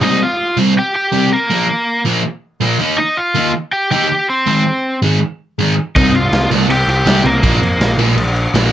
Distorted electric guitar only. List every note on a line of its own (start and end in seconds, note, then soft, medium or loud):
0.01 0.17 C3 medium
0.01 0.17 G3 medium
0.01 0.17 C4 loud
0.57 0.72 C3 loud
0.57 0.73 G3 loud
0.57 0.73 C4 loud
1.13 1.28 C3 medium
1.13 1.28 G3 medium
1.13 1.28 C4 medium
1.51 1.65 A#2 medium
1.51 1.66 F3 medium
1.51 1.66 A#3 medium
2.05 2.21 A#2 medium
2.05 2.21 F3 loud
2.05 2.21 A#3 loud
2.61 2.76 A#2 medium
2.61 2.76 F3 medium
2.61 2.77 A#3 medium
2.79 2.95 D#3 medium
2.79 2.95 A#3 medium
2.79 2.95 D#4 medium
3.35 3.50 D#3 medium
3.35 3.50 A#3 medium
3.35 3.51 D#4 medium
3.91 4.06 D#3 medium
3.91 4.06 A#3 medium
3.91 4.07 D#4 loud
4.47 4.62 G#2 medium
4.47 4.62 D#3 medium
4.47 4.62 G#3 medium
5.02 5.17 G#2 medium
5.02 5.18 D#3 loud
5.02 5.18 G#3 loud
5.59 5.73 G#2 medium
5.59 5.74 D#3 medium
5.59 5.74 G#3 medium
5.96 6.10 C3 medium
5.96 6.11 G3 medium
5.96 6.11 C4 medium
6.51 6.66 C3 loud
6.51 6.66 G3 medium
6.51 6.67 C4 loud
7.06 7.21 C3 medium
7.06 7.21 G3 medium
7.06 7.22 C4 medium
7.43 7.58 A#2 medium
7.43 7.58 F3 medium
7.43 7.58 A#3 medium
7.99 8.14 A#2 loud
7.99 8.14 F3 loud
7.99 8.14 A#3 loud
8.54 8.69 A#2 loud
8.54 8.70 F3 medium
8.54 8.70 A#3 medium